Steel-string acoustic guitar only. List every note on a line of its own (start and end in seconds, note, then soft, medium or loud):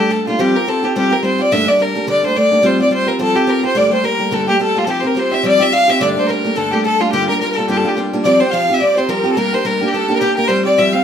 0.00 0.10 A3 soft
0.00 0.10 D4 medium
0.10 0.26 G3 medium
0.10 0.26 A3 medium
0.10 0.26 A#3 medium
0.10 0.26 D4 medium
0.27 0.39 G3 soft
0.27 0.39 A3 soft
0.27 0.39 A#3 soft
0.27 0.39 D4 medium
0.39 0.55 F3 medium
0.39 0.55 G3 medium
0.39 0.55 C4 medium
0.39 0.54 F4 medium
0.39 0.53 G4 medium
0.55 0.66 C4 soft
0.55 0.67 F4 soft
0.55 0.67 G4 soft
0.66 0.82 G3 soft
0.66 0.83 C4 medium
0.66 0.82 F4 medium
0.66 0.81 G4 medium
0.83 0.95 C4 soft
0.83 0.95 F4 medium
0.83 0.95 G4 medium
0.96 1.11 F3 medium
0.96 1.11 G3 medium
0.96 1.11 C4 medium
0.96 1.10 F4 medium
0.96 1.09 G4 medium
1.10 1.23 C4 soft
1.10 1.23 F4 soft
1.10 1.23 G4 medium
1.23 1.39 G3 medium
1.23 1.39 C4 medium
1.23 1.38 F4 medium
1.23 1.37 G4 medium
1.38 1.52 C4 soft
1.38 1.51 F4 medium
1.38 1.51 G4 medium
1.51 1.67 G2 medium
1.51 1.67 D3 medium
1.51 1.67 G3 medium
1.51 1.66 A3 medium
1.51 1.67 A#3 medium
1.51 1.65 D4 medium
1.67 1.79 G3 soft
1.67 1.79 A3 soft
1.67 1.78 A#3 soft
1.67 1.79 D4 soft
1.79 1.95 G3 medium
1.79 1.95 A3 medium
1.79 1.95 A#3 medium
1.79 1.94 D4 medium
1.95 2.07 G3 soft
1.95 2.07 A3 soft
1.95 2.07 A#3 soft
1.95 2.07 D4 medium
2.07 2.23 G2 medium
2.07 2.23 D3 medium
2.07 2.23 G3 medium
2.07 2.22 A3 medium
2.07 2.23 A#3 medium
2.07 2.22 D4 medium
2.23 2.35 G3 soft
2.23 2.35 A3 soft
2.23 2.34 A#3 soft
2.23 2.35 D4 soft
2.35 2.51 G3 medium
2.35 2.50 A3 medium
2.35 2.51 A#3 soft
2.35 2.50 D4 medium
2.51 2.62 G3 soft
2.51 2.63 A3 soft
2.51 2.63 A#3 soft
2.51 2.63 D4 medium
2.62 2.79 F3 medium
2.62 2.79 G3 medium
2.62 2.79 C4 medium
2.62 2.78 F4 medium
2.62 2.77 G4 medium
2.78 2.90 C4 soft
2.78 2.91 F4 soft
2.78 2.91 G4 soft
2.90 3.07 G3 soft
2.90 3.07 C4 medium
2.90 3.07 F4 medium
2.90 3.05 G4 medium
3.06 3.18 C4 soft
3.06 3.19 F4 soft
3.06 3.19 G4 soft
3.19 3.35 F3 medium
3.19 3.35 G3 medium
3.19 3.35 C4 medium
3.19 3.34 F4 medium
3.19 3.34 G4 medium
3.35 3.46 C4 soft
3.35 3.47 F4 soft
3.35 3.47 G4 medium
3.47 3.63 G3 soft
3.47 3.63 C4 medium
3.47 3.62 F4 medium
3.47 3.61 G4 medium
3.62 3.75 C4 soft
3.62 3.75 F4 soft
3.62 3.75 G4 medium
3.75 3.91 G2 medium
3.75 3.91 D3 medium
3.75 3.91 G3 medium
3.75 3.91 A3 medium
3.75 3.91 A#3 medium
3.75 3.90 G4 medium
3.91 4.03 G3 soft
3.91 4.04 A3 soft
3.91 4.02 A#3 soft
3.91 4.04 G4 soft
4.04 4.19 G3 medium
4.04 4.18 A3 medium
4.04 4.19 A#3 medium
4.04 4.17 G4 medium
4.18 4.31 G3 soft
4.18 4.31 A3 soft
4.18 4.31 A#3 soft
4.18 4.31 G4 medium
4.31 4.47 G2 medium
4.31 4.47 D3 medium
4.31 4.47 G3 medium
4.31 4.46 A3 medium
4.31 4.48 A#3 medium
4.31 4.45 G4 medium
4.46 4.58 G3 soft
4.46 4.60 A3 soft
4.46 4.58 A#3 soft
4.46 4.59 G4 soft
4.59 4.75 G3 medium
4.59 4.74 A3 medium
4.59 4.75 A#3 medium
4.59 4.74 G4 medium
4.75 4.86 G3 soft
4.75 4.88 A3 soft
4.75 4.87 A#3 soft
4.75 4.87 G4 soft
4.87 5.03 F3 medium
4.87 5.03 G3 medium
4.87 5.03 C4 medium
4.87 5.03 F4 medium
4.87 5.02 G4 medium
5.03 5.15 C4 soft
5.03 5.16 F4 soft
5.03 5.16 G4 medium
5.15 5.31 G3 medium
5.15 5.32 C4 medium
5.15 5.32 F4 medium
5.15 5.30 G4 medium
5.31 5.43 C4 soft
5.31 5.43 F4 soft
5.31 5.44 G4 medium
5.43 5.60 F3 medium
5.43 5.60 G3 medium
5.43 5.60 C4 medium
5.43 5.59 F4 medium
5.43 5.58 G4 medium
5.59 5.71 C4 soft
5.59 5.72 F4 soft
5.59 5.72 G4 medium
5.72 5.88 G3 medium
5.72 5.88 C4 medium
5.72 5.87 F4 medium
5.72 5.87 G4 medium
5.88 6.01 C4 soft
5.88 6.01 F4 soft
5.88 6.00 G4 soft
6.00 6.16 G2 medium
6.00 6.16 D3 medium
6.00 6.17 G3 medium
6.00 6.16 A3 medium
6.00 6.16 A#3 medium
6.00 6.15 D4 medium
6.17 6.28 G3 soft
6.17 6.29 A3 soft
6.17 6.27 A#3 soft
6.17 6.29 D4 soft
6.29 6.45 G3 medium
6.29 6.44 A3 medium
6.29 6.44 A#3 medium
6.29 6.43 D4 medium
6.44 6.55 G3 soft
6.44 6.56 A3 medium
6.44 6.55 A#3 soft
6.44 6.56 D4 soft
6.55 6.72 G2 medium
6.55 6.72 D3 medium
6.55 6.72 G3 medium
6.55 6.72 A3 medium
6.55 6.72 A#3 medium
6.55 6.71 D4 medium
6.72 6.84 G3 soft
6.72 6.84 A3 medium
6.72 6.83 A#3 soft
6.72 6.84 D4 medium
6.84 7.00 G3 medium
6.84 6.99 A3 medium
6.84 7.00 A#3 medium
6.84 6.98 D4 medium
6.99 7.12 G3 soft
6.99 7.13 A3 soft
6.99 7.12 A#3 soft
6.99 7.12 D4 soft
7.13 7.29 G2 medium
7.13 7.29 D3 medium
7.13 7.29 G3 medium
7.13 7.29 A#3 medium
7.13 7.28 D4 medium
7.13 7.29 F4 medium
7.29 7.41 G3 soft
7.29 7.40 A#3 soft
7.29 7.41 D4 soft
7.29 7.41 F4 soft
7.41 7.57 G3 medium
7.41 7.57 A#3 medium
7.41 7.56 D4 medium
7.41 7.56 F4 medium
7.57 7.68 G3 soft
7.57 7.68 A#3 soft
7.57 7.69 D4 soft
7.57 7.68 F4 soft
7.68 7.84 G2 medium
7.68 7.84 D3 medium
7.68 7.84 G3 medium
7.68 7.85 A#3 medium
7.68 7.83 D4 medium
7.68 7.84 F4 medium
7.84 7.96 G3 soft
7.84 7.95 A#3 soft
7.84 7.97 D4 medium
7.84 7.97 F4 medium
7.97 8.13 G3 medium
7.97 8.12 A#3 medium
7.97 8.12 D4 medium
7.97 8.12 F4 medium
8.13 8.24 G3 soft
8.13 8.25 A#3 soft
8.13 8.25 D4 medium
8.13 8.25 F4 medium
8.25 8.41 F3 medium
8.25 8.41 G3 medium
8.25 8.41 C4 medium
8.25 8.40 F4 medium
8.25 8.39 G4 medium
8.41 8.52 C4 soft
8.41 8.53 F4 soft
8.41 8.53 G4 medium
8.53 8.69 F3 medium
8.53 8.69 G3 medium
8.53 8.69 C4 medium
8.53 8.69 F4 medium
8.53 8.68 G4 medium
8.69 8.80 C4 soft
8.69 8.81 F4 soft
8.69 8.81 G4 medium
8.81 8.97 G3 soft
8.81 8.97 C4 soft
8.81 8.97 F4 medium
8.81 8.96 G4 soft
8.97 9.08 C4 soft
8.97 9.08 F4 medium
8.97 9.09 G4 medium
9.09 9.25 F3 medium
9.09 9.25 G3 medium
9.09 9.24 C4 medium
9.09 9.24 F4 medium
9.09 9.22 G4 medium
9.24 9.37 C4 soft
9.24 9.37 F4 soft
9.24 9.37 G4 medium
9.37 9.53 G3 medium
9.37 9.53 A#3 medium
9.37 9.52 D4 medium
9.37 9.51 G4 medium
9.52 9.64 A#3 soft
9.52 9.64 D4 soft
9.52 9.65 G4 soft
9.65 9.81 G3 medium
9.65 9.81 A#3 medium
9.65 9.80 D4 medium
9.65 9.79 G4 medium
9.80 9.93 A#3 soft
9.80 9.94 D4 soft
9.80 9.93 G4 soft
9.94 10.09 G3 medium
9.94 10.10 A#3 medium
9.94 10.08 D4 medium
9.94 10.07 G4 medium
10.08 10.20 A#3 soft
10.08 10.20 D4 soft
10.08 10.21 G4 medium
10.21 10.37 G3 medium
10.21 10.37 A#3 medium
10.21 10.37 D4 medium
10.21 10.36 G4 medium
10.37 10.48 A#3 soft
10.37 10.49 D4 soft
10.37 10.49 G4 medium
10.49 10.65 F3 medium
10.49 10.65 G3 medium
10.49 10.65 C4 medium
10.49 10.64 G4 medium
10.65 10.77 G3 soft
10.65 10.78 C4 soft
10.65 10.77 G4 soft
10.78 10.93 F3 medium
10.78 10.94 G3 medium
10.78 10.93 C4 medium
10.78 10.92 G4 medium
10.93 11.04 G3 soft
10.93 11.04 C4 medium
10.93 11.04 G4 medium